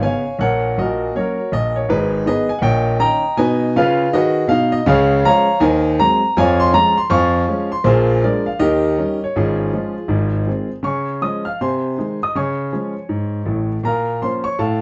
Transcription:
0.01 C#3 B3 C#4 C#5 F5 G#5
0.39 A#1 A#2 A#4 C#5 F#5
0.78 A#1 A#2 F#4 A#4 D#5
1.15 F#3 A#3 C#4 F#4 A#4 C#5
1.52 A#1 A#2 D#5
1.76 C#5
1.89 G#1 G#2 D#4 G#4 B4
2.25 D#3 B3 D#4 G#4 B4 D#5
2.49 G#5
2.59 A#1 A#2 F#5
2.63 C#5 D#5 G5
3.00 D#3 C#4 D#4 D#5 G5 A#5
3.37 B2 D#4 B4 D#5 G#5
3.76 C#3 F4 G#4 B4 F5
4.13 D#3 F#4 G#4 B4 D#5
4.47 B2 D#4 F5
4.72 D#5
4.86 C#2 C#3 G#4 C#5 F5
5.25 F3 G#3 C#4 C#5 F5 A#5
5.60 D#2 D#3 C5 D#5 G#5
5.99 F#3 G#3 C4 A#5
6.37 F2 F3 C#5 F5 G#5
6.60 C6
6.73 F3 G#3 C#4 A#5
6.97 C6
7.10 F2 F3 F5 G#5 C#6
7.48 F3 G#3 C#4
7.72 C6
7.84 A#1 A#2 F4 G#4 C5
8.24 F3 G#3 D4 G#4 A#4 D5
8.46 F5
8.59 D#2 D#3 G4 A#4 D#5
8.98 D#3 G3 C#4
9.24 C#5
9.36 G#1 G#2 C#4 F4 G#4
9.73 F3 G#3 C#4
10.08 G#1 G#2
10.46 D#3 G#3 C4
10.83 C#3 C#5 G#5 C#6
11.21 F3 G#3 C#4 D#5 D#6
11.45 F5 F6
11.61 C3 C5 G#5 C6
11.98 D#3 G#3 D#4
12.23 D#5 D#6
12.35 C#3 C#5 G#5 C#6
12.72 F3 G#3 C#4
13.09 G#2
13.46 A1 A2
13.84 A#2 A#4 F5 A#5
14.22 F3 A#3 C#4 C5 C6
14.44 C#5 C#6
14.59 A2 A4 F5 A5

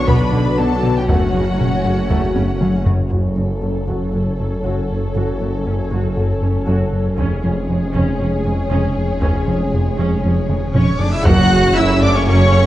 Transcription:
Already playing: B1 D3 F#3 B3 D4 F#4
0.07 B1 B2 B3 B4 B5, taiko
0.32 B1 B2 D3 D4
0.57 B1 B2 F#3 B3 F#4 A4 A5
0.83 B1 B2 D3 B4
0.96 G4 G5
1.08 F#1 F#2 C#3 F#3 A3 C#4 F#4 C#5 F#5, taiko
1.34 F#1 F#2 C#3 F#3 C#4
1.59 F#1 F#2 F#3 C#4, taiko low-mid
1.85 F#1 F#2 C#3 A3
2.09 F#1 F#2 F#3 A3, taiko
2.35 F#1 F#2 C#3 A3, taiko high
2.61 F#1 F#2 F#3 C#4, taiko mid
2.86 F#1 F#2 C#3 F#4, taiko low
3.11 F#1 F#2 F#3 C#4 F#4 A4 C#5, taiko
3.36 F#1 F#2 F#3 C#4 F#4
3.62 F#1 F#2 C#4 F#4
3.87 F#1 F#2 F#3 F#4, taiko
4.13 F#1 F#2 F#4
4.39 F#1 F#2 A3 C#4
4.64 F#1 F#2 F#3 F#4
4.91 F#2
5.15 F#1 F#2 F#3 F#4
5.40 F#1 F#2 F#3 C#4 F#4
5.66 F#1 F#2 C#4 F#4
5.91 F#1 F#2 F#3 F#4
6.16 F#1 F#2 F#4
6.41 F#1 F#2 A3 C#4
6.67 F#1 F#2 F#3 F#4
6.93 F#2
7.17 F1 F2 C#3 G#3 C#4 G#4 C#5, taiko
7.43 F1 F2 F3 G#3 C#4
7.68 F1 F2 G#3 C#4
7.93 F1 F2 C#3 C#4, taiko
8.19 F1 F2 C#4
8.45 F1 F2 F3 G#3
8.70 F1 F2 C#3 C#4
8.97 F2
9.21 F1 F2 C#3 C#4, taiko, reverse cymbal
9.46 F1 F2 F3 G#3 C#4
9.72 F1 F2 G#3 C#4
9.98 F1 F2 C#3 C#4
10.23 F1 F2 C#4
10.49 F1 F2 F3 G#3, taiko mid
10.74 F1 F2 C#3 C#4 C#5 C#6, taiko low-mid
11.00 F2 D4 D5 D6, taiko low
11.12 E4 E5 E6
11.25 F#1 F#2 C#3 F#3 A3 C#4 F#4 A4 C#5 F#5 F#6, taiko, impact
11.51 F#2 F#4
11.76 F#1 F#2 F#3 C#4 E4 E5 E6
12.01 F#2 A3 D4 D5 D6
12.14 C#4 C#5 C#6
12.26 F#1 F#2 F#3 C#4 C#5 C#6
12.52 F#2

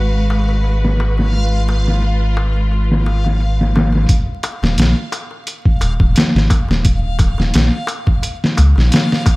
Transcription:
Already playing: G#1 G#3 F#4 B4 F5
0.30 closed hi-hat, darbuka tek
0.49 darbuka tek
0.64 closed hi-hat, darbuka tek
0.85 snare
0.99 closed hi-hat, darbuka tek
1.18 snare, darbuka tek
1.33 F4, closed hi-hat, darbuka tek
1.68 closed hi-hat, darbuka tek
1.87 snare, darbuka tek
2.02 closed hi-hat, darbuka tek
2.37 closed hi-hat, darbuka tek
2.56 darbuka tek
2.71 closed hi-hat, darbuka tek
2.91 snare
3.06 closed hi-hat, darbuka tek
3.24 snare, darbuka tek
3.40 closed hi-hat, darbuka tek
3.61 snare
3.75 snare, closed hi-hat, darbuka tek
3.92 snare, darbuka tek
4.09 F5, kick, closed hi-hat, darbuka tek
4.43 closed hi-hat, darbuka tek
4.62 D#1, snare, darbuka tek
4.78 A#1, snare, closed hi-hat, darbuka tek
5.12 closed hi-hat, darbuka tek
5.31 darbuka tek
5.47 closed hi-hat, darbuka tek
5.65 kick
5.81 D#1, closed hi-hat, darbuka tek
6.00 D#1, kick, darbuka tek
6.15 snare, closed hi-hat, darbuka tek
6.35 G#1, snare
6.50 kick, closed hi-hat, darbuka tek
6.69 D#1, snare, darbuka tek
6.85 kick, closed hi-hat, darbuka tek
7.19 kick, closed hi-hat, darbuka tek
7.38 D#1, snare, darbuka tek
7.54 A#1, snare, closed hi-hat, darbuka tek
7.87 closed hi-hat, darbuka tek
8.07 kick, darbuka tek
8.23 closed hi-hat, darbuka tek
8.44 snare
8.57 C#2, closed hi-hat, darbuka tek
8.76 A#1, snare, darbuka tek
8.92 snare, closed hi-hat, darbuka tek
9.12 snare
9.26 kick, closed hi-hat, darbuka tek

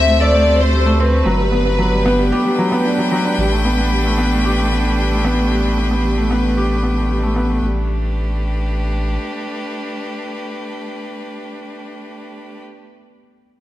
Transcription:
Already playing: D2 G3 A3 C4 D4 G4 E5
0.07 A3 C5
0.20 A4 D5
0.33 A3
0.46 C4
0.60 A3 C5
0.73 G3
0.86 A3
1.00 C4 B4
1.13 A3
1.26 G1 F#3
1.39 G3 D4
1.52 B3
1.62 B3 B4
1.79 F#3
1.92 G3
1.99 G5
2.06 B3
2.19 G3
2.32 G4
2.45 G3
2.59 F#3
2.72 B3
2.85 D4
2.99 F#3
3.12 F#3
3.25 D4
3.38 A1 G3
3.52 A3
3.65 B3
3.78 B3
3.91 G3
4.05 A3
4.18 B3
4.32 A3
4.45 G4
4.58 A3
4.71 B3
4.84 A3
4.98 G3
5.11 A3
5.25 B3
5.38 A3
5.51 G3
5.65 A3
5.78 B3
5.91 B3
6.04 G3
6.17 A3
6.31 B3
6.44 A3
6.57 G4
6.70 A3
6.83 B3
6.97 A3
7.10 G3
7.23 A3
7.36 B3
7.49 A3
7.62 A1 G3 A3
7.71 D4
7.78 G4
7.87 B4

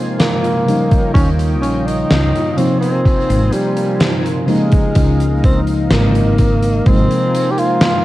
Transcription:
Already playing: C3 F3 G#3 A#3 D#4 F4 A#4 C5 G#5
0.18 A#3, snare, closed hi-hat
0.44 closed hi-hat
0.66 C#3 F3 G3 A#3 D#4 F4 C#5 D#5 G5, closed hi-hat
0.91 kick, closed hi-hat
1.14 D#2 C#4, kick, closed hi-hat
1.39 closed hi-hat
1.61 A#1 C#4, closed hi-hat
1.86 D#4, closed hi-hat
2.10 C#2, snare, closed hi-hat
2.35 closed hi-hat
2.56 C3 F3 A#3 C4 D#4 A#4 C5 G#5, closed hi-hat
2.80 C4, closed hi-hat
3.05 muted fretless electric bass stroke, kick, closed hi-hat
3.30 G#1, closed hi-hat
3.52 G3, closed hi-hat
3.77 closed hi-hat
4.00 snare, closed hi-hat
4.26 closed hi-hat
4.46 C#3 F3 G#3 A#3 D#4 D#5 F5, closed hi-hat
4.72 kick, closed hi-hat
4.95 C#2, kick, closed hi-hat
5.20 closed hi-hat
5.43 C4, kick, closed hi-hat
5.67 closed hi-hat
5.90 G#1 A#3, snare, closed hi-hat
6.15 closed hi-hat
6.38 kick, closed hi-hat
6.63 closed hi-hat
6.85 G#1 C3 F3 G#3 A#3 C4 D#4 F4 A#4 C5 G#5, kick, closed hi-hat
7.11 closed hi-hat
7.35 closed hi-hat
7.51 G4
7.58 F4, closed hi-hat
7.81 snare, closed hi-hat

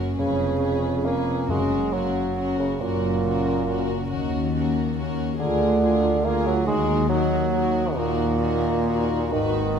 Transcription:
Already playing: F#2 A#3 C#4 F#4 A#4
0.16 F1 F2 C#3 C#4 G#4 B4
0.57 C#4 B4
0.62 B3 G#4
1.03 A#3 C#4 G#4 B4
1.47 F#1 F#2 G#3 C#4 F#4 A#4
1.92 F#3 A#3 C#4 F#4 A#4
2.34 C#4 F#4 A#4
2.39 F#4
2.59 C#3
2.79 F#1 F#2 A#2 A#3 C#4 A#4
2.85 F#4
3.23 C#3 C#4 A#4
3.28 F#4
3.66 C#4 F#4 A#4
4.09 D#2 D#3 C#4 F#4 A#4
4.54 C#4 F#4 A#4
4.96 C#4 F#4 A#4
5.38 D2 D3 F4 G#4 A#4
5.81 A#3 F4 G#4 A#4
6.23 A#3 F4 G#4 A#4
6.46 F#3
6.66 D#2 D#3 G#3 D#4 F#4 A#4
7.09 F#3 D#4 F#4 A#4
7.51 D#4 F#4 A#4
7.55 A#4
7.95 D#2 A#2 D#4 F#4 A#4
8.39 D#4 F#4 A#4
8.86 D#4 F#4 A#4
9.31 G#1 G#2 D#3 D#4 F#4 B4
9.75 D#4 B4

